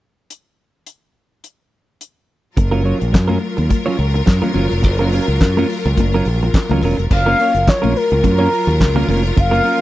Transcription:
0.30 closed hi-hat
0.86 closed hi-hat
1.44 closed hi-hat
2.01 closed hi-hat
2.55 F#1 F#3 F4 A#4, muted clean electric guitar stroke, kick, closed hi-hat, muted conga
2.71 F#3 C#4 F4 A#4, muted conga
2.84 F#3 C#4 F4 C#5
3.00 A#1, muted clean electric guitar stroke, closed hi-hat
3.13 F#2, muted clean electric guitar stroke, kick, snare, clap, closed hi-hat
3.28 F#3 C#4 F4 A#4, muted conga, high conga
3.40 muted clean electric guitar stroke
3.57 D#2, muted clean electric guitar stroke, closed hi-hat
3.69 muted clean electric guitar stroke, kick, closed hi-hat, high conga
3.86 F#3 C#4 F4 C#5, muted conga
3.99 C#2, muted clean electric guitar stroke
4.14 muted clean electric guitar stroke, closed hi-hat
4.26 F#2, muted clean electric guitar stroke, kick, snare, clap, closed hi-hat
4.42 F#3 C#4 F4 A#4, high conga, low conga
4.54 F#1 F#3 C#4 F4 A#4, low conga
4.69 F1, muted clean electric guitar stroke, closed hi-hat
4.81 F#1, muted clean electric guitar stroke, kick, closed hi-hat
4.99 F#3 C#4 F4 A#4, muted conga
5.12 F#3 C#4 F4 A#4, open hi-hat
5.28 C#2, closed hi-hat
5.41 F#2, muted clean electric guitar stroke, kick, snare, clap, closed hi-hat
5.57 F#3 C#4 F4 A#4, muted conga, high conga
5.69 muted clean electric guitar stroke, open hi-hat
5.84 C#2, muted clean electric guitar stroke, closed hi-hat
5.97 F#1, muted clean electric guitar stroke, kick, closed hi-hat, muted conga, high conga
6.14 F#3 C#4 F4 A#4, muted conga
6.25 A#1, muted clean electric guitar stroke, open hi-hat
6.42 muted clean electric guitar stroke, closed hi-hat
6.53 muted clean electric guitar stroke, kick, snare, clap, closed hi-hat, muted conga
6.69 C#2 F#3 C#4 F4 A#4, muted conga, high conga, low conga
6.81 E1 F#3 C#4 F4 A#4, open hi-hat, low conga
6.98 F1, muted clean electric guitar stroke, closed hi-hat
7.10 F#1 F#3 F4 A#4 F5, muted clean electric guitar stroke, kick, crash
7.26 A#3 C#4 F4 A#4
7.39 A#3 C#4 F4 C#5, open hi-hat
7.55 F#1, muted clean electric guitar stroke, closed hi-hat
7.67 C#5, muted clean electric guitar stroke, kick, snare, clap, closed hi-hat, muted conga
7.82 A#1 A#3 C#4 F4 A#4, muted conga, high conga
7.96 A#4, muted clean electric guitar stroke, open hi-hat
8.10 C#2, muted clean electric guitar stroke, closed hi-hat
8.23 F#2 A#4, muted clean electric guitar stroke, kick, closed hi-hat, muted conga, high conga
8.39 A#3 C#4 F4 C#5, muted conga
8.51 muted clean electric guitar stroke, open hi-hat
8.67 D#2, muted clean electric guitar stroke, closed hi-hat
8.80 C#2, muted clean electric guitar stroke, kick, snare, clap, closed hi-hat
8.95 A#3 C#4 F4 A#4, high conga, low conga
9.07 F1 A#3 C#4 F4 A#4, open hi-hat, low conga
9.25 muted clean electric guitar stroke, closed hi-hat
9.37 F#1 F5, muted clean electric guitar stroke, kick, closed hi-hat, muted conga
9.51 A#3 C#4 F4 A#4, muted conga
9.63 A#3 C#4 F4 A#4, open hi-hat

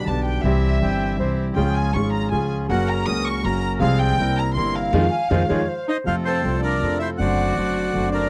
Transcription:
0.05 B1 B2 D3 G3 B3 D4 G4 A5
0.09 G4
0.24 G5
0.43 C2 C3 E3 G3 C4 E4 G4 E5
0.47 G4
0.80 G1 G2 E3 G3 C4 E4 G4 G5
1.17 C2 C3 E3 G3 C4 E4 G4 C5
1.21 G4
1.54 C#2 C#3 F3 G#3 C#4 F4 G#4 G5
1.59 G#4
1.75 G#5
1.93 G#1 G#2 F3 G#3 C#4 F4 G#4 C#6
1.97 G#4
2.13 A#5
2.31 C#2 C#3 F3 G#3 C#4 F4 G#4 G#5
2.68 F#1 F#2 C#3 F#3 A#3 C#4 F#4 A#4 F#5
2.88 A#5
3.05 C#2 C#3 F#3 A#3 C#4 F#4 A#4 D#6
3.10 F#4
3.25 C#6
3.42 F#1 F#2 C#3 F#3 A#3 C#4 F#4 A#4 A#5
3.46 F#4
3.79 C2 C3 F3 G#3 C4 F4 G#4 F5
3.83 F4
3.98 G5
4.17 C2 C3 G3 A#3 C4 E4 A#4
4.36 A#5
4.55 G1 G2 C3 G3 A#3 C4 E4 A#4 C6
4.59 E4
4.75 F5
4.93 F2 D#3 F3 G#3 D#4 F4 G#4
5.10 G#5
5.30 F2 D#3 F3 G#3 D#4 F4 G#4 C5
5.48 F2 D#3 F3 G#3 D#4 F4 G#4 C#5
5.68 C5
5.87 D#4 C5 D#5
6.04 F2 C3 F3 A3 C4 F4 A4 C5 F5
6.08 F4
6.25 C4 A4 C5
6.43 C2 C3 F3 A3 C4 F4 A4
6.62 D4 A#4 D5
6.79 F2 C3 F3 A3 C4 F4 A4
6.83 F4
6.99 E4 C5 E5
7.18 F#1 F#2 D3 F#3 A3 C4 D4 F#4 C5 D5 F#5
7.54 F#1 F#2 D3 F#3 A3 C4 D4 F#4 C5
7.58 F#4
7.93 F#1 F#2 D3 F#3 A3 C4 D4 F#4 C5
8.12 D4 A#4 D5

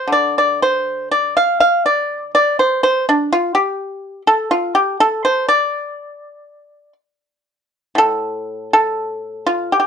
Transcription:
0.07 D3
0.12 D5
0.38 D5
0.62 C5
1.11 D5
1.37 F5
1.60 F5
1.86 D5
2.35 D5
2.59 C5
2.83 C5
3.09 D4
3.33 F4
3.55 G4
4.27 A4
4.51 F4
4.75 G4
5.00 A4
5.25 C5
5.49 D5
7.95 A2 A4
8.73 A4
9.47 F4
9.72 G4
9.80 G4

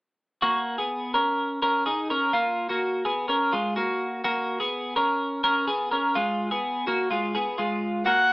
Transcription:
0.42 A#3 F#4
0.78 B3 G#4
1.14 C#4 A#4
1.62 C#4 A#4
1.86 D#4 G#4
2.10 C#4 A#4
2.33 A#3 F4
2.69 A#3 F#4
3.05 B3 G#4
3.28 C#4 A#4
3.53 G#3 F4
3.76 A#3 F#4
4.24 A#3 F#4
4.60 B3 G#4
4.96 C#4 A#4
5.44 C#4 A#4
5.68 B3 G#4
5.91 C#4 A#4
6.15 G#3 F4
6.51 B3 G#4
6.87 A#3 F#4
7.11 G#3 F4
7.35 B3 G#4
7.58 G#3 F4
8.06 A#3 F#4 F#5

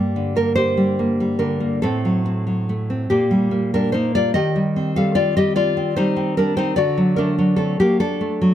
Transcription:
Already playing: G2 G3 A#3 G4
0.16 D3
0.36 A#3 D4 A#4
0.56 G4 C5
0.77 G3
0.99 A#3
1.20 G3
1.39 D3 D4 A#4
1.60 A#3
1.82 A2 C4 A4
2.05 F#3
2.26 C4
2.47 F#3
2.69 A3
2.90 C4
3.10 A#2 A#3 G4
3.31 G3
3.51 A#3
3.74 G3 D4 A#4
3.92 A#3 D#4 C5
4.15 G3 F4 D5
4.34 D#3 G4 D#5
4.56 G3
4.76 C4
4.96 G3 A4 F5
5.15 C4 F4 D5
5.37 G3 G4 D#5
5.56 F4 D5
5.77 C4
5.96 G3 D#4 C5
6.16 C4
6.37 G3 D4 A#4
6.57 C4 D#4 C5
6.76 D3 F#4 D5
6.97 F#3
7.16 A3 D4 A#4
7.38 F#3
7.56 A3 C4 A4
7.80 F#3 A#3 G4
8.00 D4 A4
8.21 A3
8.41 F#3

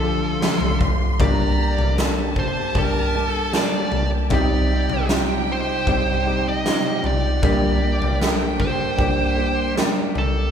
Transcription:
Already playing: D2 D3 F3 D4 F4 G4 A4 A5
0.00 F3 A3 D4 G4
0.40 F3 A3 D4 F4 G4 A4 C6, snare
0.60 floor tom
0.81 kick, floor tom
1.19 G1 G2 D3 G3 A#3 D4 G4 D5 A#5, kick, floor tom
1.58 G3 A#3 D4 G4
1.78 floor tom
1.96 G3 A#3 D4 A4 A5, snare
2.36 C5, kick
2.74 G3 A#3 D4 G4 A#4, kick, floor tom
3.14 G3 A#3 D4 G4
3.28 A4
3.53 G3 A#3 D4 G4 A4, snare
3.57 D5
3.92 floor tom
4.30 C2 C3 G3 C4 D#4 G4 D5 G5, kick, floor tom
4.70 C4 D#4 G4
4.90 floor tom
5.09 G3 C4 D#4 F4, snare
5.52 C5
5.87 G3 C4 D#4 G4, kick, floor tom
6.26 G3 C4 D#4 G4
6.48 D#5
6.64 G3 C4 D#4 F4 G4, snare
7.04 D5, floor tom
7.36 F#5
7.41 A#1 A#2 D3 G3 A#3 D4 G4 G5, kick, floor tom
7.81 G3 A#3 D4 G4
8.02 floor tom
8.20 G3 A#3 D4 A4, snare
8.60 C5, kick
8.97 G3 A#3 D4 G4, kick, floor tom
9.35 G3 A#3 D4 G4
9.75 G3 A#3 D4 G4, snare
10.15 A4, floor tom

